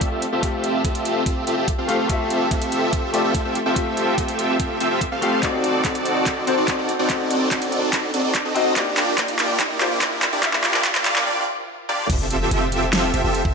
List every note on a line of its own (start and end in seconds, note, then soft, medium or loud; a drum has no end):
0.00 0.41 A3 medium
0.00 0.42 F4 medium
0.00 0.44 G4 medium
0.00 3.15 D5 medium
0.00 2.11 E5 medium
0.00 kick medium
0.00 closed hi-hat medium
0.00 riser medium
0.12 0.25 C4 medium
0.12 0.25 F4 medium
0.12 0.25 G4 medium
0.12 0.25 A4 medium
0.12 0.25 E5 medium
0.22 closed hi-hat medium
0.32 0.82 C4 medium
0.32 0.82 F4 medium
0.32 0.82 G4 medium
0.32 0.82 A4 medium
0.32 0.82 E5 medium
0.41 1.85 A3 medium
0.41 1.86 F4 medium
0.41 1.87 G4 medium
0.41 kick medium
0.41 closed hi-hat medium
0.64 closed hi-hat medium
0.84 1.24 C4 medium
0.84 1.24 F4 medium
0.84 1.24 G4 medium
0.84 1.24 A4 medium
0.84 1.24 E5 medium
0.84 kick loud
0.84 closed hi-hat medium
0.95 closed hi-hat medium
1.05 closed hi-hat medium
1.26 1.45 C4 medium
1.26 1.45 F4 medium
1.26 1.45 G4 medium
1.26 1.45 A4 medium
1.26 1.45 E5 loud
1.26 kick loud
1.26 closed hi-hat medium
1.47 1.55 C4 loud
1.47 1.55 F4 medium
1.47 1.55 G4 medium
1.47 1.55 A4 medium
1.47 1.55 E5 loud
1.47 closed hi-hat medium
1.57 1.71 C4 medium
1.57 1.71 F4 medium
1.57 1.71 G4 medium
1.57 1.71 A4 medium
1.57 1.71 E5 medium
1.68 kick medium
1.68 closed hi-hat medium
1.78 1.87 C4 medium
1.78 1.87 F4 medium
1.78 1.87 G4 medium
1.78 1.87 A4 medium
1.78 1.87 F5 loud
1.88 2.06 A3 medium
1.88 2.07 C4 medium
1.88 2.07 F4 medium
1.88 2.07 G4 medium
1.88 2.07 A4 medium
1.88 2.07 F5 medium
1.88 2.08 F5 medium
1.88 closed hi-hat medium
2.07 3.10 A3 medium
2.07 2.49 C4 medium
2.07 3.11 F4 medium
2.07 2.49 F4 medium
2.07 2.49 G4 medium
2.07 3.12 G4 medium
2.07 2.49 A4 medium
2.07 2.49 E5 medium
2.07 kick loud
2.07 closed hi-hat medium
2.11 3.12 E5 medium
2.30 closed hi-hat medium
2.51 3.11 C4 medium
2.51 3.11 F4 medium
2.51 3.11 G4 medium
2.51 3.11 A4 medium
2.51 3.11 E5 medium
2.51 kick loud
2.51 closed hi-hat medium
2.62 closed hi-hat medium
2.72 closed hi-hat medium
2.93 kick loud
2.93 closed hi-hat medium
3.13 3.22 A3 medium
3.13 3.22 C4 loud
3.13 3.22 F4 medium
3.13 3.22 G4 medium
3.13 3.22 A4 medium
3.13 3.23 D5 medium
3.13 3.22 E5 loud
3.13 closed hi-hat medium
3.24 3.43 C4 medium
3.24 3.43 F4 medium
3.24 3.43 G4 medium
3.24 3.43 A4 medium
3.24 3.43 E5 loud
3.35 kick medium
3.35 closed hi-hat medium
3.45 3.58 C4 medium
3.45 3.58 F4 medium
3.45 3.58 G4 medium
3.45 3.58 A4 medium
3.45 3.58 E5 medium
3.55 closed hi-hat medium
3.66 4.15 C4 medium
3.66 4.15 F4 medium
3.66 4.15 G4 medium
3.66 4.15 A4 medium
3.66 4.15 E5 medium
3.74 5.19 A3 medium
3.74 5.19 F4 medium
3.74 5.20 G4 medium
3.74 kick medium
3.74 closed hi-hat medium
3.97 closed hi-hat medium
4.18 4.57 C4 medium
4.18 4.57 F4 medium
4.18 4.57 G4 medium
4.18 4.57 A4 medium
4.18 4.57 E5 medium
4.18 kick loud
4.18 closed hi-hat medium
4.28 closed hi-hat medium
4.39 closed hi-hat medium
4.60 4.78 C4 medium
4.60 4.78 F4 medium
4.60 4.78 G4 medium
4.60 4.78 A4 medium
4.60 4.78 E5 medium
4.60 kick loud
4.60 closed hi-hat medium
4.80 4.88 C4 medium
4.80 4.88 F4 medium
4.80 4.88 G4 medium
4.80 4.88 A4 medium
4.80 4.88 E5 loud
4.80 closed hi-hat medium
4.91 5.04 C4 medium
4.91 5.04 F4 medium
4.91 5.04 G4 medium
4.91 5.04 A4 medium
4.91 5.04 E5 medium
5.01 kick medium
5.01 closed hi-hat medium
5.12 5.21 C4 medium
5.12 5.21 F4 medium
5.12 5.21 G4 medium
5.12 5.21 A4 medium
5.12 5.21 F5 loud
5.21 5.40 A3 medium
5.21 5.40 C4 medium
5.21 5.40 F4 medium
5.21 5.40 G4 medium
5.21 5.41 G4 medium
5.21 5.40 A4 medium
5.21 5.40 F5 medium
5.21 5.41 F5 medium
5.21 closed hi-hat medium
5.41 6.44 C4 medium
5.41 5.82 C4 medium
5.41 6.44 D#4 medium
5.41 5.82 D#4 medium
5.41 5.82 F#4 medium
5.41 6.45 F#4 medium
5.41 5.82 A4 medium
5.41 5.82 D5 medium
5.41 6.46 D5 medium
5.41 kick medium
5.41 clap soft
5.41 closed hi-hat medium
5.64 closed hi-hat medium
5.85 6.45 C4 medium
5.85 6.45 D#4 medium
5.85 6.45 F#4 medium
5.85 6.45 A4 medium
5.85 6.45 D5 medium
5.85 kick loud
5.85 clap medium
5.85 closed hi-hat medium
5.95 closed hi-hat medium
6.05 closed hi-hat medium
6.26 kick loud
6.26 clap medium
6.26 closed hi-hat medium
6.46 6.55 C4 medium
6.46 6.55 D#4 medium
6.46 6.55 F#4 medium
6.46 6.56 F#4 medium
6.46 6.55 A4 medium
6.46 6.56 C5 medium
6.46 6.55 D5 loud
6.46 closed hi-hat medium
6.57 6.76 C4 medium
6.57 6.76 D#4 medium
6.57 6.76 F#4 medium
6.57 6.76 A4 medium
6.57 6.76 D5 loud
6.68 kick loud
6.68 clap medium
6.68 closed hi-hat medium
6.78 6.91 C4 medium
6.78 6.91 D#4 medium
6.78 6.91 F#4 medium
6.78 6.92 A4 medium
6.78 6.91 D5 medium
6.89 closed hi-hat medium
6.99 7.49 C4 medium
6.99 7.49 D#4 medium
6.99 7.49 F#4 medium
6.99 7.49 A4 medium
6.99 7.49 D5 medium
7.07 8.52 C4 medium
7.07 8.53 D#4 medium
7.07 8.53 F#4 medium
7.07 kick loud
7.07 clap medium
7.07 closed hi-hat medium
7.31 closed hi-hat medium
7.51 7.90 C4 medium
7.51 7.91 D#4 medium
7.51 7.90 F#4 medium
7.51 7.91 A4 medium
7.51 7.90 D5 medium
7.51 kick loud
7.51 clap medium
7.51 closed hi-hat medium
7.62 closed hi-hat medium
7.72 closed hi-hat medium
7.93 8.11 C4 medium
7.93 8.11 D#4 medium
7.93 8.11 F#4 medium
7.93 8.11 A4 medium
7.93 8.11 D5 loud
7.93 kick loud
7.93 clap medium
7.93 closed hi-hat medium
8.14 8.22 C4 loud
8.14 8.22 D#4 medium
8.14 8.22 F#4 medium
8.14 8.22 A4 medium
8.14 8.22 D5 loud
8.14 closed hi-hat medium
8.24 8.37 C4 medium
8.24 8.37 D#4 medium
8.24 8.37 F#4 medium
8.24 8.37 A4 medium
8.24 8.37 D5 medium
8.35 kick loud
8.35 clap medium
8.35 closed hi-hat medium
8.45 8.54 C4 medium
8.45 8.54 D#4 medium
8.45 8.54 F#4 medium
8.45 8.54 A4 medium
8.45 8.54 D#5 loud
8.55 8.73 C4 medium
8.55 8.74 C4 medium
8.55 8.74 D#4 medium
8.55 8.74 F#4 medium
8.55 8.74 A4 medium
8.55 8.74 D#5 medium
8.55 closed hi-hat medium
8.74 9.77 A#3 medium
8.74 9.15 A#3 medium
8.74 9.15 D4 medium
8.74 9.78 F4 medium
8.74 9.15 F4 medium
8.74 9.15 G4 medium
8.74 9.78 G4 medium
8.74 9.15 D5 medium
8.74 kick loud
8.74 clap medium
8.74 closed hi-hat medium
8.78 9.79 D5 medium
8.97 clap medium
8.97 closed hi-hat medium
9.18 9.78 A#3 medium
9.18 9.78 D4 medium
9.18 9.78 F4 medium
9.18 9.78 G4 medium
9.18 9.78 D5 loud
9.18 kick loud
9.18 clap medium
9.18 closed hi-hat medium
9.28 closed hi-hat medium
9.39 clap medium
9.39 closed hi-hat medium
9.60 kick loud
9.60 clap medium
9.60 closed hi-hat medium
9.80 9.88 A#3 medium
9.80 9.88 A#3 loud
9.80 9.88 D4 medium
9.80 9.89 F4 medium
9.80 9.88 F4 loud
9.80 9.88 G4 loud
9.80 9.89 G4 medium
9.80 9.89 C5 medium
9.80 9.88 D5 loud
9.80 clap medium
9.80 closed hi-hat medium
9.91 10.09 A#3 loud
9.91 10.09 D4 medium
9.91 10.09 F4 medium
9.91 10.09 G4 medium
9.91 10.09 D5 loud
10.01 kick loud
10.01 clap medium
10.01 closed hi-hat medium
10.12 10.25 A#3 medium
10.12 10.25 D4 medium
10.12 10.25 F4 medium
10.12 10.25 G4 medium
10.12 10.25 D5 medium
10.22 clap medium
10.22 closed hi-hat medium
10.32 10.82 A#3 medium
10.32 10.82 D4 medium
10.32 10.82 F4 medium
10.32 10.82 G4 medium
10.32 10.82 D5 medium
10.41 11.25 A#3 medium
10.41 11.26 F4 medium
10.41 11.27 G4 medium
10.41 kick loud
10.41 clap medium
10.41 closed hi-hat medium
10.45 11.27 E5 medium
10.53 clap medium
10.64 clap medium
10.64 closed hi-hat medium
10.74 clap medium
10.85 11.24 A#3 medium
10.85 11.24 D4 medium
10.85 11.24 F4 medium
10.85 11.24 G4 medium
10.85 11.24 D5 medium
10.85 kick medium
10.85 clap loud
10.85 closed hi-hat medium
10.95 clap medium
10.95 closed hi-hat medium
11.05 clap loud
11.05 closed hi-hat medium
11.16 clap loud
11.26 11.45 A#3 medium
11.26 11.45 D4 medium
11.26 11.45 F4 medium
11.26 11.45 G4 medium
11.26 11.45 D5 medium
11.89 12.07 A#3 loud
11.89 12.07 D4 medium
11.89 12.07 F4 medium
11.89 12.07 G4 medium
11.89 12.07 D5 loud
12.10 12.49 F1 loud
12.10 12.49 C4 medium
12.10 12.49 F4 medium
12.10 12.49 G4 medium
12.10 12.49 A4 medium
12.10 12.49 E5 medium
12.10 kick loud
12.10 closed hi-hat medium
12.10 crash loud
12.10 impact medium
12.30 closed hi-hat medium
12.51 13.12 F1 loud
12.51 13.11 C4 medium
12.51 13.11 F4 medium
12.51 13.11 G4 medium
12.51 13.11 A4 medium
12.51 13.11 E5 loud
12.51 closed hi-hat medium
12.72 closed hi-hat medium
12.93 snare loud
12.93 closed hi-hat medium
13.14 13.22 F1 medium
13.14 13.22 C4 loud
13.14 13.22 F4 medium
13.14 13.22 G4 medium
13.14 13.22 A4 medium
13.14 13.22 E5 loud
13.14 closed hi-hat medium
13.24 13.43 F1 loud
13.24 13.43 C4 loud
13.24 13.43 F4 medium
13.24 13.43 G4 medium
13.24 13.43 A4 medium
13.24 13.43 E5 loud
13.35 closed hi-hat medium
13.45 13.54 F1 loud
13.45 13.54 C4 medium
13.45 13.54 F4 medium
13.45 13.54 G4 medium
13.45 13.54 A4 medium
13.45 13.54 E5 loud
13.45 kick loud